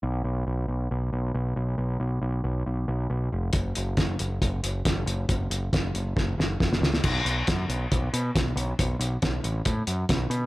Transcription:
<<
  \new Staff \with { instrumentName = "Picked electric bass" } { \clef bass \time 4/4 \key fis \phrygian \tempo 4 = 137 b,,8 b,,8 b,,8 b,,8 b,,8 b,,8 b,,8 b,,8 | b,,8 b,,8 b,,8 b,,8 b,,8 b,,8 b,,8 eis,,8 | fis,,8 fis,,8 fis,,8 fis,,8 fis,,8 fis,,8 fis,,8 fis,,8 | fis,,8 fis,,8 fis,,8 fis,,8 fis,,8 fis,,8 fis,,8 cis,8 |
b,,8 b,,8 fis,8 b,,8 b,,8 b,8 b,,8 b,,8 | b,,8 b,,8 b,,8 a,,8 a,8 fis,8 b,,8 b,8 | }
  \new DrumStaff \with { instrumentName = "Drums" } \drummode { \time 4/4 r4 r4 r4 r4 | r4 r4 r4 r4 | <hh bd>8 hh8 <hh bd sn>8 hh8 <hh bd>8 hh8 <hh bd sn>8 hh8 | <hh bd>8 hh8 <hh bd sn>8 hh8 <bd sn>8 sn8 <bd sn>16 sn16 sn16 sn16 |
<cymc bd>8 hh8 <hh bd sn>8 hh8 <hh bd>8 hh8 <hh bd sn>8 hh8 | <hh bd>8 hh8 <hh bd sn>8 hh8 <hh bd>8 hh8 <hh bd sn>8 hh8 | }
>>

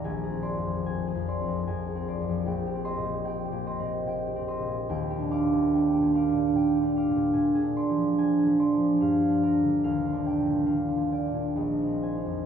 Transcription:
<<
  \new Staff \with { instrumentName = "Harp" } { \time 3/4 \key ees \major \tempo 4 = 73 << { bes''8 c'''2~ c'''8~ | c'''8 c'''2~ c'''8 | r8 d'''2~ d'''8~ | d'''8 c'''4. r8 bes''8~ |
bes''8 g''4. r8 aes''8 | } \\ { <d'' aes''>16 aes'16 d''16 f,16 aes''16 aes'16 <d'' c'''>16 f,16 aes''16 aes'16 <d'' c'''>16 f,16 | g''16 g'16 ees''16 bes,16 g''16 g'16 <ees'' c'''>16 bes,16 g''16 g'16 <ees'' c'''>16 bes,16 | g''16 g'16 f''16 bes,16 g''16 g'16 <f'' d'''>16 bes,16 g''16 g'16 <f'' d'''>16 bes,16 | aes''16 aes'16 d''16 f16 aes''16 aes'16 <d'' c'''>16 f16 f''16 f'16 d''16 d16 |
f''16 f'16 d''16 bes,16 f''16 f'16 <d'' g''>16 bes,16 ees''16 ees'16 c''16 f,16 | } >> }
  \new Staff \with { instrumentName = "Harp" } { \clef bass \time 3/4 \key ees \major \tuplet 3/2 { <bes,, bes>8 c'8 f,8 c'8 f,8 c'8 f,8 c'8 f,8 } | \tuplet 3/2 { bes,,8 c'8 bes,8 c'8 bes,8 c'8 bes,8 c'8 bes,8 } | \tuplet 3/2 { ees,8 d'8 bes,8 d'8 bes,8 d'8 bes,8 d'8 bes,8 } | \tuplet 3/2 { bes,8 d'8 f8 d'8 f8 d'8 g,8 d'4 } |
\tuplet 3/2 { ees,8 d'8 bes,8 d'8 bes,8 d'8 bes,,8 c'8 ees'8 } | }
>>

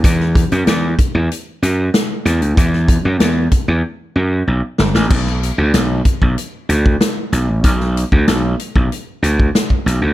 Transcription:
<<
  \new Staff \with { instrumentName = "Slap bass" } { \clef bass \time 4/4 \key b \minor \tempo 4 = 95 e,8. fis,16 e,8 r16 e,16 r8 fis,8 r8 e,16 d,16 | e,8. fis,16 e,8 r16 e,16 r8 fis,8 b,,16 r16 g,,16 a,,16 | b,,8. d,16 b,,8 r16 b,,16 r8 d,8 r8 b,,16 a,,16 | b,,8. d,16 b,,8 r16 b,,16 r8 d,8 r8 b,,16 d,16 | }
  \new DrumStaff \with { instrumentName = "Drums" } \drummode { \time 4/4 <hh bd>16 sn16 <hh bd>16 hh16 <hh sn>8 <hh bd>8 hh8 hh8 <hh sn>8 <hh sn>16 hh16 | <hh bd>16 sn16 <hh bd>8 <hh sn>8 <hh bd>8 r4 r8 sn16 sn16 | <cymc bd>16 sn16 hh8 <hh sn>8 <hh bd>16 bd16 hh8 hh16 bd16 <hh sn>8 <hh sn>8 | <hh bd>16 sn16 hh16 bd16 <hh sn>8 hh16 bd16 hh8 hh16 bd16 <hh sn>16 bd16 <hh sn>8 | }
>>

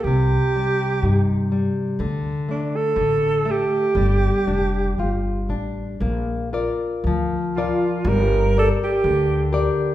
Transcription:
<<
  \new Staff \with { instrumentName = "Alto saxophone" } { \time 2/4 \key d \phrygian \tempo 4 = 61 g'4. r8 | r8 d'16 a'8. g'8~ | g'4. r8 | \key bes \major r4. f'8 |
bes'8 a'16 g'8. r8 | }
  \new Staff \with { instrumentName = "Nylon-string guitar" } { \time 2/4 \key d \phrygian c8 g8 ees'8 g8 | d8 a8 d8 a8 | g8 d'8 f'8 d'8 | \key bes \major bes8 <f' bes' d''>8 f8 <f' bes' d''>8 |
g8 <g' bes' d''>8 d8 <g' bes' d''>8 | }
  \new Staff \with { instrumentName = "Upright bass" } { \clef bass \time 2/4 \key d \phrygian c,8 r8 g,4 | d,8 r8 a,,4 | g,,8 f,,8 g,,8 a,,8 | \key bes \major bes,,4 d,4 |
g,,4 d,4 | }
>>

